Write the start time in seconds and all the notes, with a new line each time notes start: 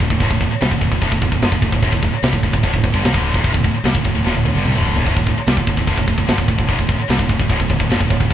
0.00 D1 D2 A2, kick
0.10 D1 D2 A2, kick
0.20 D1 D2 A2, kick, crash
0.30 D1 D2 A2, kick
0.41 D1 D2 A2, kick
0.51 muted distorted electric guitar stroke, muted fingered electric bass stroke
0.61 C2 C3 G3, snare, crash
0.71 D1 D2 A2, kick
0.81 D1 D2 A2, kick
0.91 D1 D2 A2, kick
1.01 D1 D2 A2, kick, crash
1.12 D1 D2 A2, kick
1.22 D1 D2 A2, kick
1.32 D1 D2 A2, kick
1.41 G1 G2 D3, snare, crash
1.52 D1 D2 A2, kick
1.62 D1 D2 A2, kick
1.72 D1 D2 A2, kick
1.82 D1 D2 A2, kick, crash
1.92 D1 D2 A2, kick
2.03 D1 D2 A2, kick
2.13 muted fingered electric bass stroke, muted distorted electric guitar stroke
2.23 C2 C3 G3, snare, crash
2.33 D1 D2 A2, kick
2.43 D1 D2 A2, kick
2.53 D1 D2 A2, kick
2.63 D1 D2 A2, kick, crash
2.73 D1 D2 A2, kick
2.83 D1 D2 A2, kick
2.94 G1 G2 D3, kick
3.04 C2 C3 G3, snare, crash
3.13 D1 D2 A2 D3, kick
3.34 D#1 D#2 A#2, kick
3.44 D1 D2 A2, kick, crash
3.53 D1 D2 A2, kick
3.64 D1 D2 A2, kick
3.74 muted fingered electric bass stroke, muted distorted electric guitar stroke
3.84 C2 C3 G3, snare, crash
3.95 D1 D2 A2, kick
4.05 D1 D2 A2, kick
4.14 D1 D2 A2
4.24 D1 D2 A2, snare
4.35 D1 D2 A2
4.45 D1 D2 A2, high tom
4.55 G1 G2 D3
4.65 C2 C3 G3, mid tom
4.75 D1 D2 A2 D3, mid tom
4.86 floor tom
4.96 D#1 D#2 A#2, floor tom
5.06 D1 D2 A2, kick, crash
5.16 D1 D2 A2, kick
5.27 D1 D2 A2, kick
5.37 muted fingered electric bass stroke, muted distorted electric guitar stroke
5.47 C2 C3 G3, snare, crash
5.57 D1 D2 A2, kick
5.67 D1 D2 A2, kick
5.77 D1 D2 A2, kick
5.87 D1 D2 A2, kick, crash
5.98 D1 D2 A2, kick
6.08 D1 D2 A2, kick
6.18 D1 D2 A2, kick
6.27 G1 G2 D3, snare, crash
6.38 D1 D2 A2, kick
6.48 D1 D2 A2, kick
6.58 D1 D2 A2, kick
6.67 D1 D2 A2, kick, crash
6.78 D1 D2 A2, kick
6.89 D1 D2 A2, kick
6.99 muted distorted electric guitar stroke, muted fingered electric bass stroke
7.08 C2 C3 G3, snare, crash
7.19 D1 D2 A2, kick
7.29 D1 D2 A2, kick
7.39 D1 D2 A2, kick
7.50 D1 D2 A2, kick, crash
7.60 D1 D2 A2, kick
7.70 D1 D2 A2, kick
7.80 D1 D2 A2, kick
7.90 G1 G2 D3, snare, crash
8.00 D1 D2 A2, kick
8.10 D1 D2 A2, kick
8.20 D1 D2 A2, kick
8.30 D2, crash